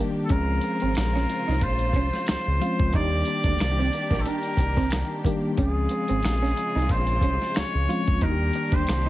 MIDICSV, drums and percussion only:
0, 0, Header, 1, 2, 480
1, 0, Start_track
1, 0, Tempo, 659341
1, 218, Time_signature, 4, 2, 24, 8
1, 6619, End_track
2, 0, Start_track
2, 0, Title_t, "Drums"
2, 213, Note_on_c, 9, 42, 90
2, 218, Note_on_c, 9, 36, 127
2, 286, Note_off_c, 9, 42, 0
2, 291, Note_off_c, 9, 36, 0
2, 445, Note_on_c, 9, 42, 69
2, 518, Note_off_c, 9, 42, 0
2, 582, Note_on_c, 9, 42, 50
2, 655, Note_off_c, 9, 42, 0
2, 691, Note_on_c, 9, 42, 82
2, 705, Note_on_c, 9, 26, 89
2, 710, Note_on_c, 9, 38, 116
2, 764, Note_off_c, 9, 42, 0
2, 778, Note_off_c, 9, 26, 0
2, 783, Note_off_c, 9, 38, 0
2, 850, Note_on_c, 9, 38, 34
2, 923, Note_off_c, 9, 38, 0
2, 942, Note_on_c, 9, 42, 72
2, 1015, Note_off_c, 9, 42, 0
2, 1087, Note_on_c, 9, 38, 39
2, 1160, Note_off_c, 9, 38, 0
2, 1175, Note_on_c, 9, 36, 101
2, 1178, Note_on_c, 9, 42, 78
2, 1248, Note_off_c, 9, 36, 0
2, 1251, Note_off_c, 9, 42, 0
2, 1300, Note_on_c, 9, 42, 48
2, 1373, Note_off_c, 9, 42, 0
2, 1406, Note_on_c, 9, 36, 83
2, 1412, Note_on_c, 9, 42, 75
2, 1479, Note_off_c, 9, 36, 0
2, 1485, Note_off_c, 9, 42, 0
2, 1554, Note_on_c, 9, 38, 30
2, 1626, Note_off_c, 9, 38, 0
2, 1649, Note_on_c, 9, 42, 87
2, 1660, Note_on_c, 9, 26, 100
2, 1665, Note_on_c, 9, 38, 123
2, 1721, Note_off_c, 9, 42, 0
2, 1733, Note_off_c, 9, 26, 0
2, 1738, Note_off_c, 9, 38, 0
2, 1904, Note_on_c, 9, 42, 79
2, 1977, Note_off_c, 9, 42, 0
2, 2035, Note_on_c, 9, 36, 110
2, 2108, Note_off_c, 9, 36, 0
2, 2130, Note_on_c, 9, 42, 87
2, 2137, Note_on_c, 9, 36, 127
2, 2203, Note_off_c, 9, 42, 0
2, 2210, Note_off_c, 9, 36, 0
2, 2367, Note_on_c, 9, 42, 73
2, 2440, Note_off_c, 9, 42, 0
2, 2501, Note_on_c, 9, 42, 50
2, 2505, Note_on_c, 9, 36, 97
2, 2574, Note_off_c, 9, 42, 0
2, 2578, Note_off_c, 9, 36, 0
2, 2610, Note_on_c, 9, 42, 77
2, 2624, Note_on_c, 9, 26, 88
2, 2629, Note_on_c, 9, 38, 107
2, 2683, Note_off_c, 9, 42, 0
2, 2697, Note_off_c, 9, 26, 0
2, 2702, Note_off_c, 9, 38, 0
2, 2769, Note_on_c, 9, 38, 32
2, 2842, Note_off_c, 9, 38, 0
2, 2862, Note_on_c, 9, 42, 69
2, 2934, Note_off_c, 9, 42, 0
2, 2989, Note_on_c, 9, 36, 93
2, 3006, Note_on_c, 9, 38, 37
2, 3061, Note_off_c, 9, 36, 0
2, 3079, Note_off_c, 9, 38, 0
2, 3098, Note_on_c, 9, 42, 79
2, 3171, Note_off_c, 9, 42, 0
2, 3223, Note_on_c, 9, 42, 48
2, 3295, Note_off_c, 9, 42, 0
2, 3328, Note_on_c, 9, 36, 78
2, 3335, Note_on_c, 9, 42, 82
2, 3401, Note_off_c, 9, 36, 0
2, 3408, Note_off_c, 9, 42, 0
2, 3472, Note_on_c, 9, 36, 86
2, 3476, Note_on_c, 9, 38, 35
2, 3545, Note_off_c, 9, 36, 0
2, 3549, Note_off_c, 9, 38, 0
2, 3571, Note_on_c, 9, 42, 86
2, 3582, Note_on_c, 9, 26, 101
2, 3587, Note_on_c, 9, 38, 121
2, 3644, Note_off_c, 9, 42, 0
2, 3655, Note_off_c, 9, 26, 0
2, 3660, Note_off_c, 9, 38, 0
2, 3818, Note_on_c, 9, 36, 83
2, 3828, Note_on_c, 9, 42, 79
2, 3891, Note_off_c, 9, 36, 0
2, 3901, Note_off_c, 9, 42, 0
2, 4058, Note_on_c, 9, 42, 92
2, 4061, Note_on_c, 9, 36, 124
2, 4131, Note_off_c, 9, 42, 0
2, 4134, Note_off_c, 9, 36, 0
2, 4288, Note_on_c, 9, 42, 69
2, 4361, Note_off_c, 9, 42, 0
2, 4426, Note_on_c, 9, 42, 51
2, 4499, Note_off_c, 9, 42, 0
2, 4533, Note_on_c, 9, 42, 74
2, 4546, Note_on_c, 9, 26, 83
2, 4551, Note_on_c, 9, 38, 115
2, 4605, Note_off_c, 9, 42, 0
2, 4619, Note_off_c, 9, 26, 0
2, 4624, Note_off_c, 9, 38, 0
2, 4691, Note_on_c, 9, 38, 34
2, 4764, Note_off_c, 9, 38, 0
2, 4784, Note_on_c, 9, 42, 72
2, 4857, Note_off_c, 9, 42, 0
2, 4929, Note_on_c, 9, 38, 36
2, 5002, Note_off_c, 9, 38, 0
2, 5018, Note_on_c, 9, 36, 95
2, 5021, Note_on_c, 9, 42, 82
2, 5091, Note_off_c, 9, 36, 0
2, 5094, Note_off_c, 9, 42, 0
2, 5145, Note_on_c, 9, 42, 51
2, 5218, Note_off_c, 9, 42, 0
2, 5249, Note_on_c, 9, 36, 82
2, 5257, Note_on_c, 9, 42, 80
2, 5322, Note_off_c, 9, 36, 0
2, 5329, Note_off_c, 9, 42, 0
2, 5399, Note_on_c, 9, 38, 31
2, 5472, Note_off_c, 9, 38, 0
2, 5492, Note_on_c, 9, 42, 79
2, 5503, Note_on_c, 9, 26, 108
2, 5509, Note_on_c, 9, 38, 119
2, 5565, Note_off_c, 9, 42, 0
2, 5576, Note_off_c, 9, 26, 0
2, 5581, Note_off_c, 9, 38, 0
2, 5752, Note_on_c, 9, 42, 82
2, 5825, Note_off_c, 9, 42, 0
2, 5880, Note_on_c, 9, 36, 104
2, 5952, Note_off_c, 9, 36, 0
2, 5978, Note_on_c, 9, 42, 90
2, 5982, Note_on_c, 9, 36, 122
2, 6051, Note_off_c, 9, 42, 0
2, 6055, Note_off_c, 9, 36, 0
2, 6212, Note_on_c, 9, 42, 74
2, 6285, Note_off_c, 9, 42, 0
2, 6348, Note_on_c, 9, 42, 49
2, 6349, Note_on_c, 9, 36, 104
2, 6420, Note_off_c, 9, 42, 0
2, 6421, Note_off_c, 9, 36, 0
2, 6455, Note_on_c, 9, 42, 77
2, 6469, Note_on_c, 9, 26, 99
2, 6474, Note_on_c, 9, 38, 112
2, 6528, Note_off_c, 9, 42, 0
2, 6542, Note_off_c, 9, 26, 0
2, 6547, Note_off_c, 9, 38, 0
2, 6619, End_track
0, 0, End_of_file